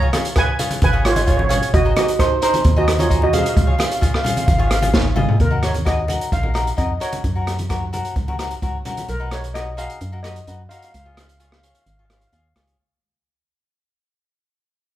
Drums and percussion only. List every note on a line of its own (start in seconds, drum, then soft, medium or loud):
0.13 cross-stick medium
0.13 closed hi-hat medium
0.13 high conga medium
0.25 closed hi-hat medium
0.36 kick medium
0.36 cross-stick medium
0.36 closed hi-hat medium
0.59 closed hi-hat medium
0.59 low conga medium
0.71 closed hi-hat medium
0.71 high conga medium
0.82 kick loud
0.82 closed hi-hat medium
0.82 high conga medium
1.05 cross-stick medium
1.05 closed hi-hat medium
1.16 closed hi-hat medium
1.16 high conga medium
1.28 kick medium
1.28 closed hi-hat medium
1.39 high conga medium
1.50 closed hi-hat medium
1.50 low conga medium
1.63 closed hi-hat medium
1.74 kick loud
1.74 closed hi-hat medium
1.96 cross-stick medium
1.96 closed hi-hat medium
1.96 high conga medium
2.08 closed hi-hat medium
2.19 kick medium
2.19 cross-stick medium
2.19 closed hi-hat medium
2.42 closed hi-hat medium
2.54 closed hi-hat medium
2.54 high conga medium
2.64 kick loud
2.64 closed hi-hat medium
2.64 high conga medium
2.88 cross-stick medium
2.88 closed hi-hat medium
2.99 closed hi-hat medium
2.99 high conga medium
3.11 kick medium
3.11 closed hi-hat medium
3.22 high conga medium
3.33 closed hi-hat medium
3.33 low conga medium
3.46 closed hi-hat medium
3.57 kick loud
3.57 closed hi-hat medium
3.79 cross-stick medium
3.79 closed hi-hat medium
3.79 high conga medium
3.91 closed hi-hat medium
4.02 kick medium
4.02 closed hi-hat medium
4.14 cross-stick medium
4.25 closed hi-hat medium
4.25 low conga medium
4.37 closed hi-hat medium
4.37 high conga medium
4.48 kick loud
4.48 closed hi-hat medium
4.48 high conga medium
4.71 cross-stick medium
4.71 closed hi-hat medium
4.83 closed hi-hat medium
4.83 high conga medium
4.83 low conga medium
4.94 kick medium
4.94 snare medium
5.16 mid tom loud
5.16 low conga medium
5.29 floor tom medium
5.40 kick medium
5.40 closed hi-hat medium
5.63 cross-stick medium
5.63 closed hi-hat medium
5.74 closed hi-hat medium
5.74 high conga medium
5.86 kick medium
5.86 cross-stick medium
5.86 closed hi-hat medium
6.08 closed hi-hat medium
6.08 low conga medium
6.21 closed hi-hat medium
6.32 kick medium
6.32 closed hi-hat medium
6.43 high conga medium
6.55 cross-stick medium
6.55 closed hi-hat medium
6.67 closed hi-hat medium
6.78 kick medium
6.78 closed hi-hat medium
7.01 closed hi-hat medium
7.12 closed hi-hat medium
7.12 high conga medium
7.24 kick medium
7.24 closed hi-hat medium
7.47 cross-stick medium
7.47 closed hi-hat medium
7.59 closed hi-hat medium
7.59 high conga medium
7.70 kick medium
7.70 cross-stick medium
7.70 closed hi-hat medium
7.93 closed hi-hat medium
7.93 low conga medium
8.05 closed hi-hat medium
8.16 kick medium
8.16 closed hi-hat soft
8.28 high conga medium
8.39 cross-stick medium
8.39 closed hi-hat medium
8.51 closed hi-hat medium
8.62 kick medium
8.62 closed hi-hat soft
8.85 closed hi-hat medium
8.85 low conga medium
8.97 closed hi-hat medium
8.97 high conga medium
9.09 closed hi-hat medium
9.31 cross-stick medium
9.31 closed hi-hat medium
9.44 closed hi-hat medium
9.55 cross-stick medium
9.55 closed hi-hat medium
9.78 closed hi-hat medium
9.90 closed hi-hat medium
10.01 closed hi-hat medium
10.24 cross-stick medium
10.24 closed hi-hat medium
10.36 closed hi-hat medium
10.47 closed hi-hat medium
10.71 closed hi-hat medium
10.82 closed hi-hat medium
10.94 closed hi-hat medium
11.17 cross-stick medium
11.17 closed hi-hat medium
11.29 closed hi-hat medium
11.40 closed hi-hat soft
11.52 cross-stick medium
11.63 closed hi-hat medium
11.75 closed hi-hat medium
11.86 closed hi-hat soft
12.10 cross-stick medium
12.10 closed hi-hat medium
12.21 closed hi-hat soft
12.33 closed hi-hat soft
12.56 cross-stick medium
12.56 closed hi-hat medium
12.68 closed hi-hat soft